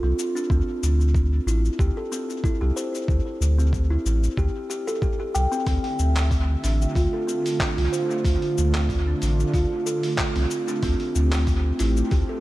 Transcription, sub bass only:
0.03 0.13 C2 medium
0.50 0.62 D2 loud
0.83 1.40 D2 medium
1.46 1.70 A1 loud
1.79 1.91 D2 medium
2.62 2.72 C2 medium
3.08 3.21 D2 medium
3.41 3.98 D2 medium
4.06 4.28 A1 loud
4.37 4.49 D2 medium
5.35 5.47 C2 medium
5.67 5.79 D2 medium
5.99 6.56 D2 medium
6.64 6.87 A1 loud
6.95 7.08 D2 medium
7.78 7.88 C2 medium
8.25 8.37 D2 medium
8.58 9.15 D2 medium
9.22 9.45 A1 medium
9.54 9.66 D2 medium
10.36 10.46 C2 medium
10.83 10.95 D2 medium
11.15 11.72 D2 medium
11.80 12.03 A1 medium
12.11 12.24 D2 medium

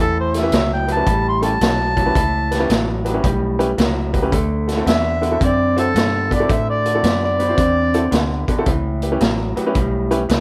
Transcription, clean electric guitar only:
0.00 0.48 A2 medium
0.00 0.49 E3 medium
0.53 0.85 A2 medium
0.53 0.85 F#3 medium
0.88 1.05 A2 medium
0.88 1.05 F#3 medium
1.07 1.57 A2 medium
1.07 1.57 G3 medium
1.61 1.93 A2 medium
1.61 1.94 F#3 loud
1.97 2.13 A2 medium
1.97 2.13 F#3 medium
2.15 2.66 A2 medium
2.15 2.66 E3 medium
2.69 3.02 A2 medium
2.69 3.02 F#3 medium
3.05 3.22 A2 medium
3.05 3.22 F#3 medium
3.23 3.74 A2 medium
3.23 3.74 G3 medium
3.78 4.10 A2 medium
3.78 4.10 F#3 medium
4.13 4.30 A2 medium
4.13 4.31 F#3 medium
4.32 4.83 D3 medium
4.32 4.83 A3 medium
4.86 5.19 D3 medium
4.86 5.19 B3 medium
5.22 5.39 D3 medium
5.22 5.39 B3 medium
5.40 5.91 D3 medium
5.40 5.91 C4 medium
5.95 6.28 D3 medium
5.95 6.28 B3 medium
6.31 6.48 D3 medium
6.31 6.48 B3 medium
6.49 7.00 D3 medium
6.49 7.00 A3 medium
7.03 7.36 D3 medium
7.03 7.36 B3 medium
7.39 7.56 D3 medium
7.39 7.56 B3 medium
7.57 8.08 D3 medium
7.57 8.09 C4 medium
8.11 8.44 D3 medium
8.11 8.44 B3 medium
8.48 8.65 D3 medium
8.48 8.65 B3 medium
8.66 9.17 A2 medium
8.66 9.17 E3 medium
9.21 9.53 A2 medium
9.21 9.53 F#3 medium
9.56 9.73 A2 medium
9.56 9.73 F#3 medium
9.75 10.26 A2 medium
9.75 10.26 G3 medium
10.29 10.40 A2 medium
10.29 10.40 F#3 loud

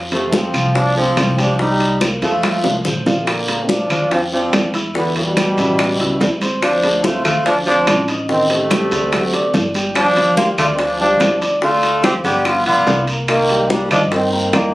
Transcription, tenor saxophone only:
0.13 0.36 C3 medium
0.34 0.76 F3 medium
0.76 0.96 F3 medium
0.97 1.39 F3 medium
1.39 1.59 F3 medium
1.60 1.99 G3 medium
2.24 2.82 A3 medium
3.21 3.29 C3 soft
3.28 3.66 D3 medium
3.64 3.72 D#3 soft
3.70 3.90 F3 medium
3.91 4.10 F3 medium
4.11 4.21 F3 medium
4.33 4.72 F3 medium
4.96 5.15 D3 medium
5.17 6.38 B2 medium
6.63 7.06 F3 medium
7.04 7.25 A3 medium
7.25 7.44 A3 medium
7.46 7.56 F3 medium
7.66 8.05 F3 medium
8.29 8.49 D#3 medium
8.49 9.71 C3 medium
9.96 10.35 F3 medium
10.38 10.47 A#3 medium
10.59 10.65 A3 medium
10.75 10.81 D#3 soft
10.79 11.00 F3 medium
11.01 11.39 F3 medium
11.63 12.01 A3 medium
12.05 12.14 C4 medium
12.25 12.45 B3 medium
12.45 12.65 B3 medium
12.66 13.05 B3 medium
13.28 13.72 D#3 medium
13.70 13.91 G3 medium
13.91 14.00 F3 medium
14.12 14.50 D#3 medium
14.53 14.74 D#3 medium

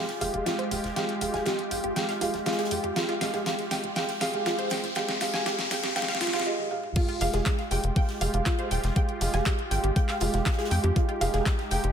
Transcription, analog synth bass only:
0.21 0.29 F1 medium
0.34 0.41 F1 medium
0.71 0.79 D#1 medium
0.84 0.91 F1 medium
1.21 1.29 F1 medium
1.34 1.41 F1 medium
1.71 1.79 G#1 loud
1.84 1.91 G#1 medium
2.21 2.29 F1 medium
2.34 2.41 F1 medium
2.71 2.79 F2 medium
2.84 2.91 F2 medium
3.21 3.29 F1 medium
3.34 3.41 F1 medium
3.71 3.79 F1 medium
3.83 3.91 F1 medium
4.21 4.29 F1 medium
4.33 4.41 F1 medium
4.71 4.79 D#1 loud
4.84 4.91 F1 medium
5.21 5.29 F1 medium
5.33 5.41 F1 medium
5.71 5.79 G#1 medium
5.83 5.91 G#1 medium
6.21 6.29 F1 medium
6.34 6.41 F1 medium
7.21 7.29 F1 loud
7.34 7.41 F1 medium
7.71 7.79 F1 loud
7.84 7.91 F1 medium
8.21 8.29 F1 medium
8.34 8.41 F1 medium
8.71 8.79 D#1 loud
8.84 8.91 F1 medium
9.21 9.29 F1 medium
9.34 9.41 F1 medium
9.71 9.79 G#1 medium
9.84 9.91 G#1 medium
10.21 10.29 F1 medium
10.34 10.41 F1 medium
10.71 10.79 F2 medium
10.84 10.91 F2 medium
11.21 11.29 F1 loud
11.34 11.41 F1 medium
11.71 11.79 F1 medium
11.84 11.91 F1 medium

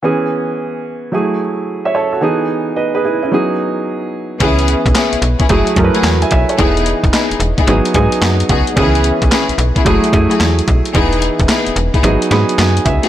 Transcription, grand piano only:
0.03 1.10 E3 medium
0.03 1.11 B3 medium
0.03 1.11 C#4 medium
0.03 1.11 G#4 medium
1.12 2.19 F#3 medium
1.12 2.20 A3 medium
1.12 2.20 E4 medium
1.12 1.40 G#4 medium
1.85 1.93 C#5 medium
1.85 1.94 E5 medium
1.95 2.11 A4 medium
1.95 2.12 C#5 medium
2.13 2.39 F#4 soft
2.13 2.38 A4 medium
2.21 3.28 E3 medium
2.21 3.29 B3 medium
2.21 2.76 D#4 medium
2.21 2.76 G#4 medium
2.76 2.93 B4 medium
2.76 2.93 D#5 medium
2.95 3.03 G#4 medium
2.95 3.04 B4 medium
3.05 3.21 E4 medium
3.05 3.21 G#4 medium
3.23 3.48 C#4 medium
3.23 3.48 E4 medium
3.31 4.38 F#3 medium
3.31 4.39 B3 medium
3.31 4.39 D#4 medium
3.31 4.40 G#4 medium
4.41 5.24 E3 medium
4.41 5.24 B3 medium
4.41 5.24 C#4 medium
4.41 5.24 G#4 medium
5.49 5.73 F#3 medium
5.49 5.73 A3 medium
5.49 5.73 E4 medium
5.49 5.73 G#4 medium
5.76 6.41 F#3 medium
5.76 6.41 A3 medium
5.76 6.42 E4 medium
5.76 5.86 A#4 medium
5.84 6.08 B4 medium
6.22 6.30 E5 medium
6.22 6.31 G#5 medium
6.32 6.48 C#5 medium
6.32 6.48 E5 medium
6.50 6.76 A4 soft
6.50 6.75 C#5 medium
6.58 7.42 E3 medium
6.58 7.42 B3 medium
6.58 7.42 D#4 medium
6.58 7.42 G#4 medium
7.68 7.91 F#3 medium
7.68 7.91 B3 medium
7.68 7.91 D#4 medium
7.68 7.92 G#4 medium
7.94 8.59 F#3 medium
7.94 8.59 B3 medium
7.94 8.59 D#4 medium
7.94 8.60 G#4 medium
7.94 8.20 G#5 medium
8.23 8.48 F#5 medium
8.50 8.75 F#5 medium
8.76 8.85 D#3 medium
8.76 9.60 B3 medium
8.76 9.60 C#4 medium
8.76 9.60 G#4 medium
8.83 9.63 E3 medium
9.85 10.09 F#3 medium
9.85 10.09 A3 medium
9.85 10.09 E4 medium
9.85 10.09 G#4 loud
10.12 10.77 F#3 medium
10.12 10.77 A3 medium
10.12 10.78 E4 medium
10.12 10.78 G#4 medium
10.95 11.78 E3 medium
10.95 11.78 B3 medium
10.95 11.78 D#4 medium
10.95 11.78 G#4 medium
12.04 12.27 F#3 medium
12.04 12.27 B3 medium
12.04 12.28 D#4 medium
12.04 12.28 G#4 medium
12.31 12.95 F#3 medium
12.31 12.96 B3 medium
12.31 12.96 D#4 medium
12.31 12.96 G#4 medium
12.31 12.57 B5 medium
12.58 12.84 G#5 medium
12.85 13.09 E5 medium

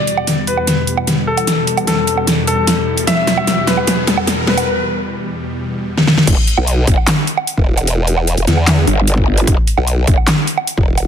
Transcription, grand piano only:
0.00 0.39 D5 medium
0.47 1.19 B4 medium
1.27 1.79 A4 medium
1.87 2.39 A4 medium
2.47 3.00 A4 medium
3.07 3.59 E5 loud
3.67 4.39 B4 medium
4.47 4.67 B4 medium

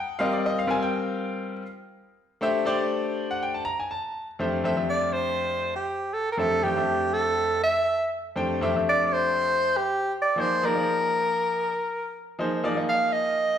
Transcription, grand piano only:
0.00 0.19 G5 medium
0.19 0.66 G3 medium
0.19 0.66 C4 medium
0.19 0.66 F4 medium
0.19 0.67 A#4 medium
0.19 0.44 D#5 medium
0.19 0.31 F5 loud
0.33 0.44 D5 medium
0.46 0.57 D#5 medium
0.59 0.67 F5 medium
0.67 1.62 G3 medium
0.67 1.62 C4 medium
0.67 1.62 F4 medium
0.67 1.62 A#4 medium
0.67 1.63 F5 medium
0.67 0.82 G#5 loud
0.83 1.52 G5 medium
2.41 2.64 A3 medium
2.41 2.64 D4 medium
2.41 2.64 G4 medium
2.41 2.65 C5 medium
2.41 2.66 E5 loud
2.65 3.60 A3 medium
2.65 3.60 D4 medium
2.65 3.60 G4 medium
2.65 3.60 C5 medium
2.65 3.60 D5 loud
3.31 3.42 F#5 medium
3.43 3.54 G5 medium
3.54 3.66 A5 medium
3.65 3.77 A#5 loud
3.80 3.91 G#5 medium
3.91 4.25 A5 medium
4.39 4.62 F2 medium
4.39 4.63 A3 medium
4.39 4.63 D4 medium
4.39 4.63 G4 medium
4.39 4.63 C5 medium
4.39 4.64 E5 medium
4.64 4.74 F2 medium
4.64 4.75 A3 medium
4.64 4.75 D4 medium
4.64 4.75 G4 medium
4.64 4.75 C5 medium
4.64 4.75 E5 medium
4.76 5.71 F2 medium
4.76 5.71 A3 medium
4.76 5.71 D4 medium
4.76 5.71 G4 medium
4.76 5.71 C5 medium
4.76 5.71 E5 medium
6.37 6.62 F2 medium
6.37 6.62 A3 medium
6.37 6.62 D4 medium
6.37 6.62 G4 medium
6.37 6.63 C5 medium
6.37 6.63 E5 medium
6.63 6.74 F2 medium
6.63 6.75 A3 medium
6.63 6.75 D4 medium
6.63 6.75 G4 medium
6.63 6.75 C5 medium
6.63 6.76 G5 medium
6.76 7.70 F2 medium
6.76 7.71 A3 medium
6.76 7.71 D4 medium
6.76 7.71 G4 medium
6.76 7.71 C5 medium
6.76 7.71 E5 medium
8.36 8.60 F2 medium
8.36 8.60 A3 medium
8.36 8.61 D4 medium
8.36 8.61 G4 medium
8.36 8.61 C5 medium
8.36 8.61 G5 medium
8.61 8.74 F2 medium
8.61 8.74 A3 medium
8.61 8.74 D4 medium
8.61 8.75 G4 medium
8.61 8.75 C5 medium
8.61 8.75 E5 medium
8.75 9.70 F2 medium
8.75 9.70 A3 medium
8.75 9.70 D4 medium
8.75 9.71 G4 medium
8.75 9.71 C5 medium
8.75 9.70 E5 medium
10.36 10.61 F3 medium
10.36 10.61 A#3 medium
10.36 10.61 D#4 medium
10.36 10.61 G#4 medium
10.36 10.62 C5 medium
10.63 10.73 F3 medium
10.63 10.73 A#3 medium
10.63 10.74 D#4 medium
10.63 10.74 G#4 medium
10.63 10.74 D5 medium
10.75 11.70 F3 medium
10.75 11.70 A#3 medium
10.75 11.70 D#4 soft
10.75 11.70 G#4 medium
10.75 11.70 D5 medium
12.39 12.62 F3 medium
12.39 12.62 A#3 medium
12.39 12.62 D#4 medium
12.39 12.63 G#4 medium
12.39 12.63 C5 medium
12.63 12.74 F3 medium
12.63 12.74 A#3 medium
12.63 12.74 D#4 medium
12.63 12.75 G#4 medium
12.63 12.76 D5 medium
12.75 13.58 F3 medium
12.75 13.58 A#3 soft
12.75 13.58 D#4 medium
12.75 13.58 G#4 medium
12.75 13.58 D#5 medium

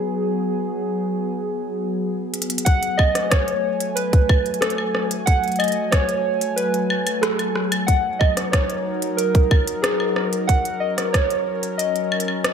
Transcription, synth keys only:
2.65 2.99 F#5 loud
2.97 3.22 D#5 loud
3.23 3.31 D#5 medium
3.30 3.98 C#5 loud
3.96 4.63 B4 loud
4.61 5.07 A4 loud
5.26 5.57 F#5 loud
5.59 5.93 D#5 loud
5.91 6.59 C#5 loud
6.56 7.24 B4 loud
7.21 7.68 A4 medium
7.87 8.21 F#5 loud
8.19 8.33 D#5 loud
8.52 9.20 C#5 loud
9.17 9.79 A#4 medium
9.82 10.28 G#4 medium
10.47 10.82 F#5 loud
10.80 10.94 D#5 loud
11.13 11.75 C#5 medium
11.78 12.53 D#5 medium

